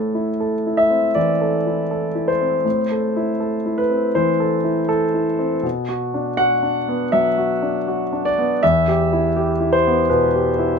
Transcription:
grand piano
Already playing: A2 A4
0.15 E4
0.40 A4
0.67 E4
0.77 E5
0.90 C4
1.15 E3 D5
1.41 A4
1.67 E4
1.91 A4
2.15 E4
2.28 C5
2.41 C4
2.65 A2
2.91 A4
3.16 E4
3.40 A4
3.66 E4
3.78 B4
3.90 C4
4.15 E3 C5
4.40 A4
4.64 E4
4.89 A4
5.14 E4
5.39 C4
5.63 B2
5.89 F#4
6.14 D4
6.37 F#4 F#5
6.63 D4
6.88 B3
7.12 F#3 E5
7.38 F#4
7.62 D4
7.88 F#4
8.13 D4
8.25 D5
8.38 B3
8.63 E2 E5
8.88 G4
9.13 E4
9.37 G4
9.61 E4
9.73 C5
9.87 B3
10.09 B2 B4
10.34 G4
10.59 E4

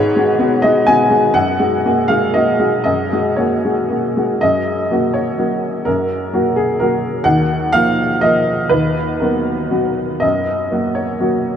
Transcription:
upright piano
Already playing: G#2 C#5
0.16 G#3 F#4
0.39 B3 F#4
0.62 G#3 F#4 D#5
0.87 B3 F#4 G#5
1.10 G#3 F#4
1.34 F#2 F#5
1.60 G#3 F#4
1.85 A#3 F#4
2.08 G#3 F#4 F5
2.34 A#3 F#4 D#5
2.60 G#3 F#4
2.84 F#2 D#5
3.13 G#3 F#4
3.36 A#3 F#4 C#5
3.65 G#3 F#4
3.90 A#3 F#4
4.17 G#3 F#4
4.41 F#2 D#5
4.91 F#3 A#3 F#4
5.14 C#5
5.38 F#3 A#3 F#4
5.85 F#2 A#4
6.33 F#3 A#3 F#4
6.56 G#4
6.80 F#3 A#3 F#4 A#4
7.24 D#2 F#5
7.73 F3 A#3 A#4 F5
8.21 F3 A#3 A#4 D#5
8.69 D#2 B4
9.20 F#3 B3 F#4 A#4
9.70 F#3 B3 F#4
10.20 F#2 D#5
10.72 F#3 A#3 F#4
10.95 C#5
11.20 F#3 A#3 F#4

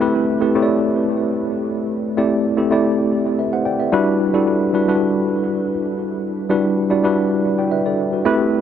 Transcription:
tine electric piano
Already playing: B4
0.00 A3 C4 E4 G4 B4
0.41 A3 C4 E4 G4 B4
0.55 A3 C4 E4 G4 C#5
0.62 D5
2.17 A3 C4 E4 G4 D5
2.57 A3 C4 E4 G4 A4
2.71 A3 C4 E4 G4 D5
3.39 B4 E5
3.53 C5 F#5
3.65 D5 G5
3.80 B4 E5
3.92 G3 D4 E4 F#4 B4
4.33 G3 D4 E4 F#4 A4
4.74 G3 D4 E4 F#4 B4
4.88 G3 D4 E4 F#4 B4
6.50 G3 D4 E4 F#4 B4
6.90 G3 D4 E4 F#4 D5
7.04 G3 D4 E4 F#4 B4
7.59 D5 G5
7.72 B4 E5
7.86 A4 D5
8.13 F#4 B4
8.25 A3 C4 E4 G4 B4

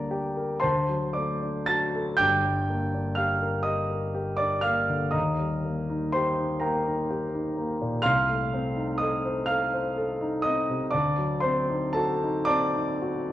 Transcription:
grand piano
Already playing: D2 G3 A#3 D4 D5 A#5 D6
0.10 G4
0.36 A#4
0.59 D2 C5 A5 C6
0.89 F#3
1.13 A3 D5 D6
1.42 D4
1.66 F#4 A5 A6
1.95 A4
2.17 G1 G2 G5 D6 G6
2.45 G3
2.70 A#3
2.94 D4
3.15 G4 F5 F6
3.42 A#4
3.63 G4 D#5 D#6
3.90 A#4
4.15 G4
4.37 D4 D5 D6
4.61 A#3 F5 F6
4.89 D3
5.11 D#2 D#5 A#5 D#6
5.40 G3
5.65 A#3
5.90 D#4
6.12 G4 C5 C6
6.39 D#4
6.60 A#3 A#4 G5 A#5
6.87 D#4
7.11 G4
7.34 D#4
7.57 A#3
7.81 A#2
8.02 C2 F5 C6 F6
8.29 A3
8.54 C4
8.77 D#4
8.98 A4 D#5 D#6
9.25 C5
9.46 A4 F5 F6
9.73 C5
9.97 A4
10.21 D#4
10.42 C4 D#5 D#6
10.70 C3
10.91 D2 D5 A5 D6
11.18 F#3
11.40 C4 C5 C6
11.69 D#4
11.93 F#4 A4 A5
12.23 D#4
12.45 C4 D5 A5 D6
12.76 D#4
13.02 F#4
13.29 D#4

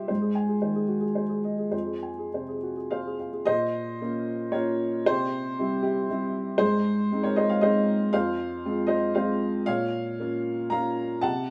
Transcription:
upright piano
Already playing: C3 G3 F#4 G4 C5 E5 G5
0.08 G#2 C5
0.21 G#4
0.35 G#5
0.48 G#4
0.61 D#3 C5
0.75 G#4
0.88 F#4
1.00 G#4
1.15 C5
1.29 G#4
1.44 D#5
1.58 G#4
1.71 F2 C5
1.86 G#4
2.03 G#5
2.18 G#4
2.33 C3 C5
2.48 G#4
2.63 F#4
2.77 G#4
2.91 C5 F5
3.06 G#4
3.20 F5
3.33 G#4
3.46 A#2 C5 D#5
4.02 A#3 C#4 F4
4.52 A#3 C#4 F4 A#4 C#5
5.06 C3 G4 C5
5.59 G3 C4 E4
5.82 E4 G4
6.09 G3 C4 E4
6.58 G#2 G#4 C5
7.12 G#3 C4 D#4
7.23 A#4 C#5
7.36 C5 D#5
7.49 C#5 F5
7.61 G#3 C4 D#4 C5 D#5
8.13 F2 C5 F5
8.66 G#3 C4 F4
8.87 C5 D#5
9.15 G#3 C4 F4 C5 F5
9.66 A#2 C#5 F5
10.20 A#3 C#4 F4
10.70 A#3 C#4 F4 F5 A#5
11.21 C3 F#5 A5

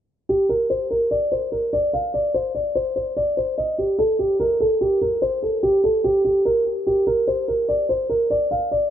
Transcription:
grand piano
0.29 G4
0.49 A#4
0.70 C5
0.91 A#4
1.11 D5
1.32 C5
1.52 A#4
1.73 D5
1.93 F5
2.14 D5
2.34 C5
2.55 D5
2.75 C5
2.96 C5
3.17 D5
3.37 C5
3.58 D#5
3.78 G4
3.99 A4
4.19 G4
4.40 A#4
4.60 A4
4.81 G4
5.02 A#4
5.22 C5
5.42 A4
5.63 G4
5.84 A4
6.04 G4
6.45 A#4
6.87 G4
7.07 A#4
7.28 C5
7.48 A#4
7.69 D5
7.89 C5
8.09 A#4
8.30 D5
8.51 F5
8.71 D5

